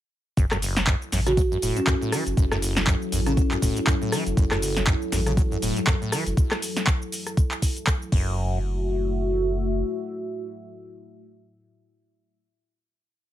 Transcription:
0.37 sub bass F#1, acid bass F#2, analog synth pad F#3 E4 A4, kick, closed hi-hat, shaker
0.51 acid bass F#2, cross-stick, snare, clap, shaker
0.62 acid bass F#1, open hi-hat, shaker
0.77 acid bass F#2, snare, closed hi-hat, shaker
0.87 acid bass F#2, kick, clap, closed hi-hat, shaker
1.02 shaker
1.12 sub bass A1, acid bass F#2, snare, open hi-hat, shaker
1.26 acid bass C#3, marimba F#4, cross-stick, closed hi-hat, shaker
1.37 acid bass F#3, kick, closed hi-hat, shaker
1.51 acid bass F#2, shaker
1.62 sub bass E1, acid bass A2, open hi-hat, shaker
1.77 acid bass F#2, marimba C#4, closed hi-hat, shaker
1.87 acid bass F#2, kick, cross-stick, clap, closed hi-hat, shaker
2.02 acid bass A2, shaker
2.12 acid bass E3, cross-stick, open hi-hat, shaker
2.27 sub bass F#1, closed hi-hat, shaker
2.37 sub bass F#1, acid bass F#2, kick, closed hi-hat, shaker
2.52 acid bass F#2, cross-stick, snare, shaker
2.62 acid bass F#1, open hi-hat, shaker
2.76 acid bass F#2, snare, closed hi-hat, shaker
2.87 acid bass F#2, kick, clap, closed hi-hat, shaker
3.02 shaker
3.12 sub bass A1, acid bass F#2, open hi-hat, shaker
3.26 acid bass C#3, marimba C#4, cross-stick, closed hi-hat, shaker
3.37 acid bass F#3, marimba C#4, kick, closed hi-hat, shaker
3.51 acid bass F#2, clap, shaker
3.62 sub bass E1, acid bass A2, kick, open hi-hat, shaker
3.77 acid bass F#2, closed hi-hat, shaker
3.87 acid bass F#2, kick, cross-stick, clap, closed hi-hat, shaker
4.02 acid bass A2, shaker
4.12 acid bass E3, cross-stick, open hi-hat, shaker
4.26 sub bass F#1, closed hi-hat, shaker
4.37 sub bass F#1, acid bass F#2, kick, closed hi-hat, shaker
4.51 acid bass F#2, cross-stick, snare, clap, shaker
4.62 acid bass F#1, open hi-hat, shaker
4.76 acid bass F#2, snare, closed hi-hat, shaker
4.87 acid bass F#2, kick, clap, closed hi-hat, shaker
5.02 shaker
5.12 sub bass A1, acid bass F#2, snare, open hi-hat, shaker
5.26 acid bass C#3, cross-stick, closed hi-hat, shaker
5.37 acid bass F#3, kick, closed hi-hat, shaker
5.51 acid bass F#2, shaker
5.62 sub bass E1, acid bass A2, open hi-hat, shaker
5.77 acid bass F#2, closed hi-hat, shaker
5.87 acid bass F#2, kick, cross-stick, clap, closed hi-hat, shaker
6.01 acid bass A2, shaker
6.12 acid bass E3, cross-stick, open hi-hat, shaker
6.26 sub bass F#1, closed hi-hat, shaker
6.37 kick, closed hi-hat, shaker
6.51 cross-stick, snare, clap, shaker
6.62 open hi-hat, shaker
6.77 snare, closed hi-hat, shaker
6.87 kick, clap, closed hi-hat, shaker
7.02 shaker
7.12 open hi-hat, shaker
7.27 cross-stick, closed hi-hat, shaker
7.37 kick, closed hi-hat, shaker
7.51 clap, shaker
7.62 kick, open hi-hat, shaker
7.77 closed hi-hat, shaker
7.87 kick, cross-stick, clap, closed hi-hat, shaker
8.02 shaker
8.12 sub bass F#1, acid bass F#2, analog synth pad A3 F#4 E5, kick, crash

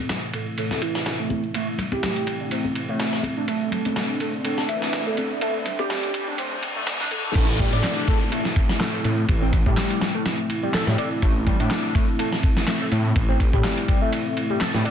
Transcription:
Already playing: analog synth pad A3 C4 E4, riser
0.09 snare, closed hi-hat, ride, low conga
0.23 closed hi-hat
0.33 analog synth lead A3, kick, closed hi-hat, ride
0.47 closed hi-hat
0.58 analog synth lead A3, closed hi-hat, ride
0.71 analog synth lead A4, snare, closed hi-hat, high conga
0.82 analog synth lead E4, kick, closed hi-hat, ride
0.95 snare, closed hi-hat
1.06 snare, closed hi-hat, ride
1.19 analog synth lead A3, closed hi-hat
1.30 analog synth lead A3, closed hi-hat, high conga
1.44 closed hi-hat
1.54 analog synth lead A3, kick, closed hi-hat, ride
1.68 closed hi-hat
1.78 kick, closed hi-hat, ride, low conga
1.92 analog synth lead G4, kick, closed hi-hat, high conga
2.03 snare, closed hi-hat, ride, low conga
2.16 closed hi-hat, ride
2.27 kick, closed hi-hat, ride
2.40 analog synth lead D4, closed hi-hat
2.51 analog synth lead C4, closed hi-hat, ride
2.65 closed hi-hat, high conga
2.75 closed hi-hat, ride
2.89 analog synth lead A3, closed hi-hat
3.00 snare, closed hi-hat, ride
3.13 analog synth lead A3, snare, closed hi-hat
3.23 closed hi-hat, ride, high conga
3.37 analog synth lead D4, closed hi-hat
3.48 analog synth lead A3, analog synth pad D4, kick, closed hi-hat, ride
3.61 closed hi-hat
3.72 kick, closed hi-hat, ride, low conga
3.85 closed hi-hat, ride, high conga
3.96 snare, closed hi-hat, ride, low conga
4.10 closed hi-hat
4.20 analog synth lead A3, kick, closed hi-hat, ride
4.34 closed hi-hat
4.45 analog synth lead A3, closed hi-hat, ride
4.58 analog synth lead A4, snare, closed hi-hat, high conga
4.69 analog synth lead E4, kick, closed hi-hat, ride
4.82 snare, closed hi-hat
4.93 snare, closed hi-hat, ride
5.06 analog synth lead A3, closed hi-hat
5.17 analog synth lead A3, closed hi-hat, ride, high conga
5.30 closed hi-hat
5.41 analog synth lead A3, kick, closed hi-hat, ride
5.55 closed hi-hat
5.66 kick, closed hi-hat, ride, low conga
5.79 analog synth lead G4, kick, closed hi-hat, high conga
5.90 snare, closed hi-hat, ride, low conga
6.03 closed hi-hat, ride
6.14 kick, closed hi-hat, ride
6.27 analog synth lead D4, closed hi-hat
6.38 analog synth lead C4, closed hi-hat, ride, reverse cymbal
6.52 closed hi-hat, high conga
6.62 closed hi-hat, ride
6.76 analog synth lead A3, closed hi-hat
6.87 snare, closed hi-hat, ride
7.00 analog synth lead D4, snare, closed hi-hat
7.11 analog synth lead A4, closed hi-hat, ride, high conga
7.24 analog synth lead A3, closed hi-hat
7.35 detuned saw bass A1, analog synth lead A3, analog synth pad A3 C4 E4, kick, closed hi-hat, crash, ride, downlifter
7.48 closed hi-hat
7.59 analog synth lead G3, kick, closed hi-hat, ride
7.73 detuned saw bass A2, analog synth lead D4, closed hi-hat, ride
7.84 snare, clap, closed hi-hat, ride
7.97 closed hi-hat
8.08 analog synth lead A3, kick, closed hi-hat, ride
8.21 closed hi-hat
8.32 analog synth lead A3, closed hi-hat, ride
8.45 snare, closed hi-hat
8.56 kick, closed hi-hat, ride
8.69 snare, closed hi-hat
8.80 analog synth lead A3, snare, clap, closed hi-hat, ride
8.94 analog synth lead A3, closed hi-hat
9.05 detuned saw bass A2, closed hi-hat, ride
9.18 closed hi-hat
9.29 detuned saw bass A1, kick, closed hi-hat, ride
9.42 analog synth lead C4, closed hi-hat
9.53 kick, closed hi-hat, ride
9.66 detuned saw bass A2, analog synth lead G3, kick, closed hi-hat
9.77 snare, clap, closed hi-hat, ride
9.90 closed hi-hat, ride
10.01 snare, closed hi-hat, ride
10.14 analog synth lead A3, closed hi-hat
10.26 snare, closed hi-hat, ride
10.39 closed hi-hat
10.50 closed hi-hat, ride
10.63 analog synth lead G3, closed hi-hat
10.74 analog synth lead A4, snare, clap, closed hi-hat, ride
10.87 detuned saw bass A2, analog synth lead G3, snare, closed hi-hat
10.98 analog synth lead D4, closed hi-hat, ride
11.11 closed hi-hat
11.22 detuned saw bass A1, analog synth lead A3, kick, closed hi-hat, ride
11.36 closed hi-hat
11.46 analog synth lead G3, kick, closed hi-hat, ride
11.60 detuned saw bass A2, analog synth lead D4, closed hi-hat, ride
11.71 snare, clap, closed hi-hat, ride
11.84 closed hi-hat
11.95 analog synth lead A3, kick, closed hi-hat, ride
12.08 closed hi-hat
12.19 analog synth lead A3, closed hi-hat, ride
12.32 snare, closed hi-hat
12.43 kick, closed hi-hat, ride
12.57 snare, closed hi-hat
12.67 analog synth lead A3, snare, clap, closed hi-hat, ride
12.81 analog synth lead A3, closed hi-hat
12.92 detuned saw bass A2, closed hi-hat, ride
13.05 closed hi-hat
13.16 detuned saw bass A1, kick, closed hi-hat, ride
13.29 analog synth lead C4, closed hi-hat
13.40 kick, closed hi-hat, ride
13.53 detuned saw bass A2, analog synth lead G3, kick, closed hi-hat
13.64 snare, clap, closed hi-hat, ride
13.78 closed hi-hat, ride
13.88 kick, closed hi-hat, ride
14.02 analog synth lead A3, closed hi-hat
14.13 closed hi-hat, ride
14.26 closed hi-hat
14.37 closed hi-hat, ride
14.50 analog synth lead G3, closed hi-hat
14.61 analog synth lead A4, snare, clap, closed hi-hat, ride
14.74 detuned saw bass A2, analog synth lead G3, snare, closed hi-hat
14.85 analog synth lead D4, closed hi-hat, ride

